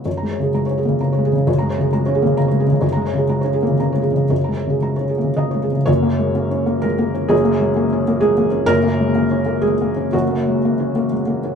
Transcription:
<<
  \new Staff \with { instrumentName = "Felt piano" } { \time 3/4 \key fis \major \tempo 4 = 125 << { cis''16 ais''16 cis''16 gis'16 ais''16 cis''16 gis'16 cis16 ais''16 cis''16 gis'16 cis16 | cis''16 ais''16 cis''16 gis'16 ais''16 cis''16 gis'16 cis16 ais''16 cis''16 gis'16 cis16 | cis''16 ais''16 cis''16 gis'16 ais''16 cis''16 gis'16 cis16 ais''16 cis''16 gis'16 cis16 | cis''16 ais''16 cis''16 gis'16 ais''16 cis''16 gis'16 cis16 ais''16 cis''16 gis'16 cis16 |
r2. | r2. | r2. | r2. | } \\ { r2. | r2. | r2. | r2 dis''4 |
cis''2 ais'4 | gis'2 gis'8 r8 | ais'2 gis'4 | fis'2 r4 | } >> }
  \new Staff \with { instrumentName = "Felt piano" } { \clef bass \time 3/4 \key fis \major \tuplet 3/2 { fis,8 gis8 cis8 gis8 cis'8 ais8 cis8 gis8 cis8 } | \tuplet 3/2 { fis,8 gis8 cis8 gis8 cis'8 ais8 cis8 gis8 cis8 } | \tuplet 3/2 { fis,8 gis8 cis8 gis8 cis'8 ais8 cis8 gis8 cis8 } | \tuplet 3/2 { fis,8 gis8 cis8 gis8 cis'8 ais8 cis8 gis8 cis8 } |
\tuplet 3/2 { <fis,, fis,>8 ais8 gis8 ais8 cis'8 ais8 gis8 ais8 cis'8 } | \tuplet 3/2 { <fis,, fis,>8 ais8 gis8 ais8 cis'8 ais8 gis8 ais8 cis'8 } | \tuplet 3/2 { <fis,, fis,>8 ais8 gis8 ais8 cis'8 ais8 gis8 ais8 cis'8 } | \tuplet 3/2 { <fis,, fis,>8 ais8 gis8 ais8 cis'8 ais8 gis8 ais8 cis'8 } | }
>>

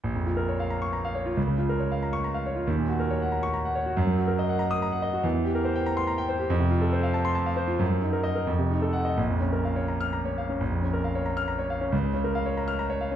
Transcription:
\new Staff \with { instrumentName = "Grand piano" } { \time 6/8 \key bes \minor \tempo 4. = 92 << { r4. r16 des'''8 r8. | r4. r16 des'''8 r8. | r4. r16 des'''8 r8. | r4. r16 ees'''8 r8. |
r4. r16 c'''8 r8. | r4. r16 c'''8 r8. | r4 ees''8 r4 ges''8 | r4. r16 f'''8 r8. |
r4. r16 f'''8 r8. | r4. r16 f'''8 r8. | } \\ { bes,,16 f,16 f'16 bes'16 des''16 f''16 bes''8 bes''16 f''16 des''16 f'16 | des,16 des16 f'16 bes'16 des''16 f''16 bes''8 bes''16 f''16 des''16 f'16 | ees,16 bes,16 ges'16 bes'16 des''16 ges''16 bes''8 bes''16 ges''16 des''16 ges'16 | ges,16 ges16 ges'16 bes'16 ees''16 ges''16 bes''8 bes''16 ges''16 ees''16 ges'16 |
e,16 e16 g'16 bes'16 c''16 g''16 bes''8 bes''16 g''16 c''16 g'16 | f,16 c16 f'16 a'16 c''16 f''16 a''8 a''16 f''16 c''16 f'16 | ges,16 ges16 ees'16 bes'8 bes'16 f,16 c16 ees'16 a'8 ees''16 | bes,,16 f,16 des'16 bes'16 f''16 des''16 bes''8 bes''16 des''16 f''16 des'16 |
bes,,16 f,16 des'16 bes'16 f''16 des''16 bes''8 bes''16 des''16 f''16 des'16 | des,16 des16 des'16 bes'16 f''16 des''16 bes''8 bes''16 des''16 f''16 des'16 | } >> }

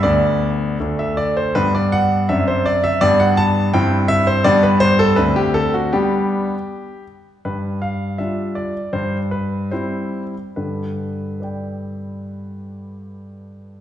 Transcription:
<<
  \new Staff \with { instrumentName = "Grand piano" } { \time 2/4 \key g \major \tempo 4 = 79 << { r2 | r2 | r2 | r2 |
r2 | r2 | r2 | r4 <b' d'' g''>4~ |
<b' d'' g''>2 | } \\ { d''4 r16 e''16 d''16 c''16 | b'16 d''16 fis''8 e''16 c''16 d''16 e''16 | d''16 fis''16 a''8 g''8 e''16 c''16 | d''16 b'16 c''16 a'16 b'16 g'16 a'16 fis'16 |
g'4. r8 | b'8 f''8 e''8 d''8 | c''8 b'8 c''4 | b'2~ |
b'2 | } >> }
  \new Staff \with { instrumentName = "Grand piano" } { \time 2/4 \key g \major <d, b d'>4 <d, a d'>4 | <g, b d'>4 <fis, c' d'>4 | <g, b d'>4 <g, c' e'>4 | <g, b d'>4 <d, c' d'>4 |
<g b d'>4 r4 | g,4 <g d' f'>4 | g,4 <g c' e'>4 | <g, d>2~ |
<g, d>2 | }
>>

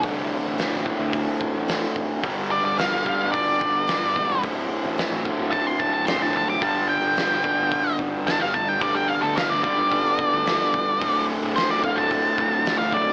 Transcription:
<<
  \new Staff \with { instrumentName = "Lead electric guitar" } { \time 4/4 \key d \mixolydian \tempo 4 = 109 r1 | r8 d''16 d''16 f''8 f''8 d''2 | r2 a''16 c'''16 a''16 a''16 c'''16 a''16 a''16 d'''16 | a''8 g''2 r8 a''16 f''16 a''16 g''16 |
d''16 g''16 f''16 a'16 f''16 d''16 d''2~ d''8~ | d''8 r8 c''16 d''16 f''16 a''4. f''16 d''8 | }
  \new Staff \with { instrumentName = "Tonewheel organ" } { \time 4/4 \key d \mixolydian <a c' e' fis'>1 | \tuplet 3/2 { <c' ees' fis' bes'>8 <b d' f' a'>4~ } <b d' f' a'>2. | <c' e' fis' a'>1 | <b d' f' a'>1 |
<b d' f' a'>1 | <c' e' fis' a'>1 | }
  \new Staff \with { instrumentName = "Overdriven electric guitar" } { \clef bass \time 4/4 \key d \mixolydian <d, a, d>4. <d, a, d>2~ <d, a, d>8 | <g, d g>4. <g, d g>2~ <g, d g>8 | <d, a, d>4. <d, a, d>2~ <d, a, d>8 | <g, d g>4. <g, d g>2~ <g, d g>8 |
<g, d g>4. <g, d g>2~ <g, d g>8 | <d, a, d>4. <d, a, d>2~ <d, a, d>8 | }
  \new Staff \with { instrumentName = "Fingered electric bass" } { \clef bass \time 4/4 \key d \mixolydian c,8 r16 a,,16 r16 a,,16 r16 d,8 r8 a,,8 r8. | g,,8. g,,16 r16 g,,16 r16 g,,8 r16 g,,8. g,16 e,,8 | d,,8 r16 a,,16 r16 a,,16 r16 d,,8 r16 d,,8 e,,8 fis,,8 | g,,8. g,,16 r16 g,,16 r16 g,,8 r16 g,,8. g,16 g,,8 |
f,,8 r16 d,16 r16 d,16 r16 g,,8 r8 d,8 r8. | d,,8. d,,16 r16 d,,16 r16 d,,8 r16 d,,8. d,16 d,,8 | }
  \new DrumStaff \with { instrumentName = "Drums" } \drummode { \time 4/4 <hho bd>4 <hho sn>8 bd8 <hho bd>8 bd8 <hho sn>8 bd8 | <hho bd>4 <hho sn>8 bd8 <hho bd>8 bd8 <hho sn>8 bd8 | <hho bd>4 <hho sn>8 bd8 <hho bd>8 bd8 <hho sn>4 | <hho bd>4 <hho sn>8 bd8 <hho bd>8 bd8 <hho sn>8 bd8 |
<hho bd>4 <hho sn>8 bd8 <hho bd>8 bd8 <hho sn>8 bd8 | <hho bd>4 <hho sn>8 bd8 <hho bd>8 bd8 <hho sn>8 bd8 | }
>>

